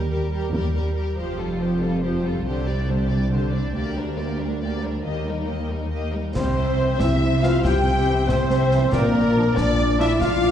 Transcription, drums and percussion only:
6.35 concert bass drum medium
6.35 snare medium
6.35 crash soft
7.00 concert bass drum medium
7.00 snare medium
7.43 snare medium
7.65 concert bass drum medium
7.65 snare medium
8.29 concert bass drum medium
8.29 snare medium
8.50 snare soft
8.71 snare soft
8.92 concert bass drum medium
8.92 snare medium
9.57 concert bass drum medium
9.57 snare medium
10.00 snare soft
10.21 concert bass drum medium
10.21 snare medium

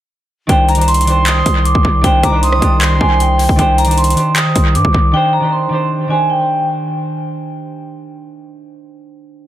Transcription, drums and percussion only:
0.49 kick loud
0.49 closed hi-hat medium
0.69 closed hi-hat medium
0.75 closed hi-hat medium
0.81 closed hi-hat medium
0.88 closed hi-hat medium
0.94 closed hi-hat medium
1.01 closed hi-hat medium
1.07 closed hi-hat medium
1.26 clap loud
1.26 closed hi-hat medium
1.46 kick loud
1.46 closed hi-hat medium
1.65 closed hi-hat medium
1.75 kick loud
1.85 kick loud
2.04 kick loud
2.04 closed hi-hat medium
2.23 kick medium
2.23 cross-stick medium
2.23 closed hi-hat medium
2.43 closed hi-hat medium
2.52 cross-stick medium
2.62 kick loud
2.62 closed hi-hat medium
2.81 clap loud
2.81 closed hi-hat medium
3.01 kick loud
3.20 closed hi-hat medium
3.39 open hi-hat medium
3.49 kick loud
3.59 kick loud
3.59 closed hi-hat medium
3.78 closed hi-hat medium
3.85 closed hi-hat medium
3.91 closed hi-hat medium
3.98 closed hi-hat medium
4.04 closed hi-hat medium
4.10 closed hi-hat loud
4.17 closed hi-hat medium
4.36 clap loud
4.36 closed hi-hat medium
4.56 kick loud
4.56 closed hi-hat medium
4.75 closed hi-hat medium
4.85 kick loud
4.94 kick loud

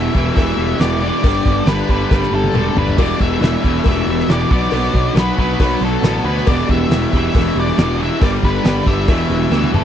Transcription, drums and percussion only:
0.15 kick medium
0.37 kick loud
0.37 open hi-hat medium
0.37 cowbell medium
0.80 snare loud
0.80 open hi-hat medium
0.80 cowbell medium
1.24 kick loud
1.24 open hi-hat medium
1.24 cowbell loud
1.46 kick medium
1.66 snare loud
1.66 open hi-hat medium
1.66 cowbell medium
1.89 kick medium
2.11 kick loud
2.11 snare medium
2.11 cowbell medium
2.23 snare medium
2.44 high tom medium
2.55 mid tom medium
2.55 cowbell medium
2.77 floor tom loud
2.88 floor tom loud
2.98 kick loud
2.98 cowbell loud
2.98 crash loud
3.20 kick medium
3.42 snare loud
3.42 open hi-hat medium
3.42 cowbell medium
3.64 kick medium
3.84 kick loud
3.84 open hi-hat medium
3.84 cowbell loud
4.20 snare soft
4.29 snare loud
4.29 open hi-hat medium
4.29 cowbell medium
4.51 kick loud
4.63 snare soft
4.72 open hi-hat medium
4.72 cowbell loud
4.95 kick medium
5.15 snare loud
5.15 open hi-hat medium
5.15 cowbell medium
5.38 kick medium
5.59 kick loud
5.59 open hi-hat medium
5.59 cowbell medium
6.03 snare loud
6.03 open hi-hat medium
6.03 cowbell medium
6.38 snare soft
6.47 kick loud
6.47 cowbell loud
6.47 crash loud
6.69 kick medium
6.91 snare loud
6.91 open hi-hat medium
6.91 cowbell medium
7.13 kick medium
7.35 kick loud
7.35 open hi-hat medium
7.35 cowbell medium
7.69 snare soft
7.78 snare loud
7.78 open hi-hat medium
7.78 cowbell medium
8.21 kick loud
8.21 open hi-hat medium
8.21 cowbell medium
8.43 kick medium
8.65 snare loud
8.65 open hi-hat medium
8.65 cowbell medium
8.86 kick medium
9.08 kick loud
9.08 open hi-hat medium
9.08 cowbell medium
9.52 snare medium
9.52 cowbell medium
9.64 high tom medium
9.74 mid tom loud

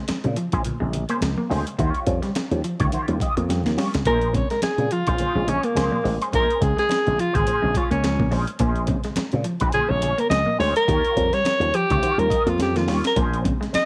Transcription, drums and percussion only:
0.08 snare loud
0.08 closed hi-hat medium
0.08 high conga medium
0.24 closed hi-hat soft
0.36 closed hi-hat medium
0.52 kick medium
0.52 closed hi-hat medium
0.64 closed hi-hat medium
0.64 muted conga soft
0.64 low conga medium
0.93 closed hi-hat medium
0.93 muted conga medium
0.93 low conga medium
1.09 closed hi-hat soft
1.21 snare loud
1.21 closed hi-hat loud
1.21 high conga medium
1.37 high conga medium
1.51 open hi-hat medium
1.67 closed hi-hat medium
1.79 kick loud
1.79 closed hi-hat medium
1.95 closed hi-hat soft
2.07 kick medium
2.07 closed hi-hat medium
2.23 snare soft
2.23 closed hi-hat soft
2.35 snare loud
2.35 closed hi-hat medium
2.35 high conga medium
2.51 closed hi-hat soft
2.64 closed hi-hat medium
2.80 kick medium
2.80 closed hi-hat medium
2.80 low conga medium
2.92 closed hi-hat medium
2.92 muted conga medium
3.08 closed hi-hat soft
3.20 kick medium
3.20 closed hi-hat medium
3.20 muted conga medium
3.37 closed hi-hat soft
3.49 snare medium
3.49 closed hi-hat loud
3.49 high conga medium
3.64 snare medium
3.64 closed hi-hat soft
3.64 high conga medium
3.76 snare medium
3.76 open hi-hat medium
3.76 high conga soft
3.94 snare loud
3.94 closed hi-hat medium
4.05 kick loud
4.05 closed hi-hat loud
4.05 muted conga soft
4.21 closed hi-hat soft
4.34 kick medium
4.34 closed hi-hat medium
4.50 snare soft
4.50 closed hi-hat soft
4.62 snare loud
4.62 closed hi-hat medium
4.62 high conga medium
4.78 closed hi-hat soft
4.91 closed hi-hat medium
5.07 kick medium
5.07 closed hi-hat medium
5.18 closed hi-hat medium
5.18 muted conga medium
5.18 low conga medium
5.48 closed hi-hat medium
5.48 muted conga medium
5.48 low conga medium
5.63 closed hi-hat soft
5.75 snare loud
5.75 closed hi-hat loud
5.75 high conga medium
5.91 high conga medium
6.05 open hi-hat medium
6.22 closed hi-hat medium
6.32 kick loud
6.32 closed hi-hat loud
6.32 muted conga soft
6.50 closed hi-hat soft
6.62 kick medium
6.62 closed hi-hat medium
6.78 snare soft
6.78 closed hi-hat soft
6.89 snare loud
6.89 closed hi-hat medium
6.89 high conga medium
7.07 closed hi-hat soft
7.19 closed hi-hat medium
7.35 kick medium
7.35 closed hi-hat medium
7.35 low conga medium
7.47 closed hi-hat medium
7.47 muted conga medium
7.75 kick medium
7.75 closed hi-hat medium
7.75 muted conga medium
7.91 closed hi-hat soft
8.03 snare loud
8.03 closed hi-hat loud
8.03 high conga medium
8.17 kick loud
8.17 high conga medium
8.32 open hi-hat medium
8.47 closed hi-hat medium
8.59 kick loud
8.59 closed hi-hat loud
8.59 muted conga soft
8.76 closed hi-hat soft
8.87 kick medium
8.87 closed hi-hat medium
9.04 snare soft
9.04 closed hi-hat soft
9.16 snare loud
9.16 closed hi-hat medium
9.16 high conga medium
9.32 closed hi-hat soft
9.44 closed hi-hat medium
9.60 kick medium
9.60 closed hi-hat medium
9.72 closed hi-hat medium
9.72 muted conga medium
9.72 low conga medium
10.02 closed hi-hat medium
10.02 muted conga medium
10.02 low conga medium
10.18 closed hi-hat soft
10.30 snare loud
10.30 closed hi-hat medium
10.30 high conga medium
10.45 high conga medium
10.60 open hi-hat medium
10.76 closed hi-hat medium
10.88 kick loud
10.88 closed hi-hat medium
10.88 muted conga soft
11.05 closed hi-hat soft
11.17 kick medium
11.17 closed hi-hat medium
11.33 snare soft
11.33 closed hi-hat soft
11.45 snare loud
11.45 closed hi-hat medium
11.45 high conga medium
11.61 closed hi-hat soft
11.74 closed hi-hat medium
11.90 kick medium
11.90 closed hi-hat medium
11.90 low conga medium
12.03 closed hi-hat medium
12.03 muted conga medium
12.19 closed hi-hat soft
12.30 kick medium
12.30 closed hi-hat medium
12.30 muted conga medium
12.47 closed hi-hat soft
12.58 snare medium
12.58 closed hi-hat loud
12.58 high conga medium
12.75 snare medium
12.75 closed hi-hat soft
12.75 high conga medium
12.88 snare medium
12.88 open hi-hat medium
13.04 snare medium
13.04 closed hi-hat medium
13.16 kick loud
13.16 closed hi-hat loud
13.16 muted conga soft
13.34 closed hi-hat soft
13.45 kick medium
13.45 closed hi-hat medium
13.63 snare soft
13.63 closed hi-hat soft
13.74 snare loud
13.74 closed hi-hat medium
13.74 high conga medium

